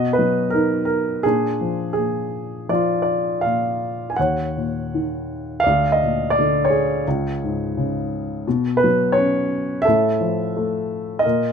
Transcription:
grand piano
Already playing: B2 F#4 D#5
0.13 B4
0.18 F#3
0.50 D#4 A#4
0.85 A#4
1.23 A#2 D4 G#4
1.61 F3
1.93 A#2 G#4
2.69 F3 F4 D5
3.02 D5
3.41 A#2 F5
4.10 G#5
4.16 D#2 C#5 F#5
4.56 A#2
4.94 D#3
5.60 D5 F5
5.66 D2
5.92 D#5
6.02 A#2
6.30 D5
6.39 D3
6.65 C#5
6.70 G#4
7.07 C#2
7.44 G#2
7.77 C#3
8.47 B2
8.77 B4
8.84 F#3
9.12 C#5
9.17 C#4
9.82 A4 E5
9.87 A2
10.21 F3
10.57 A3
11.19 D#5
11.23 A#2 A#4

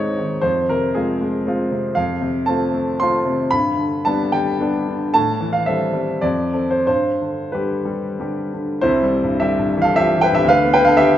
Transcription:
grand piano
Already playing: G#2 D#3 G#3 C4 D#4 C5 C#5 D#5
0.18 D#3
0.41 F2 C5
0.69 C3 A#4
0.95 G#3 C4 F4 G#4
1.21 G#3
1.47 G#3 C4 F4
1.72 C3
1.95 F2 F5
2.21 C3
2.46 A3 C4 F4 A5
2.74 A3
3.00 A3 C4 F4 C6
3.26 C3
3.51 G2 B5
3.77 D3
4.05 G3 B3 D4 A5
4.32 G3 G5
4.60 G3 B3 D4
4.87 D3
5.14 A2 A5
5.41 E3
5.53 F5
5.66 G3 C4 A4 E5
5.93 G3
6.21 F2 D5
6.53 C4 A4
6.71 C5
6.87 G2 C5
7.21 D3
7.52 D3 G3 G4 B4
7.85 G3
8.19 D3 G3 G4
8.53 D3
8.81 C2 E4 C5
9.03 G3
9.23 G2
9.40 G3 G4 E5
9.58 G2
9.77 E3
9.82 A4 F5
9.96 F3 G4 E5
10.16 E3
10.21 B4 G5
10.32 G2 G4 E5
10.44 D2
10.49 B4 F5
10.65 B3
10.74 B4 G5
10.81 D3 F5
10.87 A4
10.97 B3 G4 E5
11.14 D3

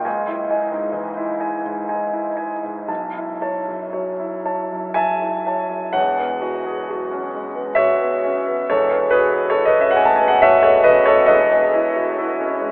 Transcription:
grand piano
0.05 C#2 G#5
0.27 E4
0.50 D#5 G#5
0.72 G#2
0.92 E3 D#5
1.17 E4
1.40 D#5 G#5
1.65 G#2
1.88 D#4 G#5
2.13 E4
2.36 D#5 G#5
2.63 G#2
2.88 B1 A5
3.17 E4
3.42 C#5 A5
3.68 F#2
3.93 F#3 C#5
4.20 E4
4.46 C#5 A5
4.72 F#2
4.94 E5 G#5 A5
5.21 E4
5.47 C#5 A5
5.69 F#2
5.93 E1 E2 C#5 F#5
6.20 B3
6.42 F#4
6.66 G#4
6.91 F#4
7.11 C#4
7.35 G#3
7.56 B3
7.75 F#4 C#5 E5
8.01 B3
8.24 C#4
8.48 B3
8.70 E1 E2 A4 C#5
8.91 B3
9.11 F#4 G#4 B4
9.34 G#4
9.50 A4 C#5
9.54 F#4
9.65 B4 D#5
9.79 C#4 E5
9.91 F#5
9.97 A3 G#5
10.05 A5
10.16 G#5
10.21 B3
10.28 D#5 F#5
10.42 F#4 C#5 E5
10.63 B3 A4 C#5
10.84 C#4 B4 D#5
11.06 B3 A4 C#5
11.26 E1 E2 B4 D#5
11.51 B3
11.74 E4
11.96 F#4
12.18 E4
12.40 C#4
12.62 G#3

